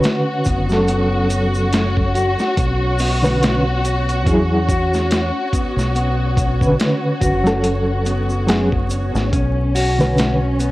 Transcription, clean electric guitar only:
0.00 0.42 F#4 loud
0.47 0.87 B3 medium
0.88 1.69 B3 medium
1.73 2.13 C#4 medium
2.15 2.57 F#4 medium
2.99 3.40 B3 medium
3.42 4.23 B3 medium
4.27 4.67 C#4 medium
4.69 5.50 F#4 medium
5.53 5.93 B3 medium
5.95 6.76 B3 medium
6.79 7.20 C#4 medium
7.21 7.64 F#4 loud
8.06 8.47 B3 medium
8.48 9.29 B3 medium
9.32 9.73 C#4 medium
9.75 10.56 F#4 loud
10.59 10.71 B3 medium

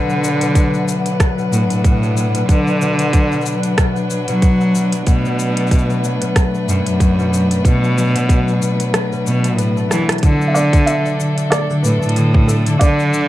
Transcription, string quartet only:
0.00 5.03 F#3 medium
0.00 10.19 D4 medium
0.00 5.03 B4 medium
5.07 10.19 A3 medium
5.07 10.19 B4 medium
10.23 13.28 F#3 medium
10.23 13.28 D4 medium
10.23 13.28 A4 medium

